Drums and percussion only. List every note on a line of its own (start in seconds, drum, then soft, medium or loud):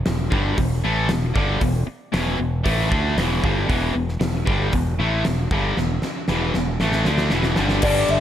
0.06 snare loud
0.06 open hi-hat soft
0.32 kick loud
0.58 kick medium
0.58 open hi-hat medium
1.09 snare loud
1.09 open hi-hat medium
1.36 kick loud
1.61 kick medium
1.61 open hi-hat medium
2.14 snare loud
2.14 open hi-hat soft
2.66 kick loud
2.66 open hi-hat medium
2.92 kick loud
3.18 snare loud
3.18 open hi-hat soft
3.44 kick loud
3.70 kick loud
3.70 open hi-hat soft
4.09 snare soft
4.21 snare loud
4.21 open hi-hat soft
4.47 kick loud
4.73 kick medium
4.73 open hi-hat soft
5.25 snare loud
5.25 open hi-hat soft
5.51 kick loud
5.77 snare medium
6.02 snare medium
6.28 snare medium
6.54 snare medium
6.80 snare medium
6.92 snare medium
7.05 snare medium
7.18 snare medium
7.30 snare medium
7.43 snare medium
7.56 snare loud
7.69 snare medium
7.82 kick loud
7.82 crash loud
8.08 ride medium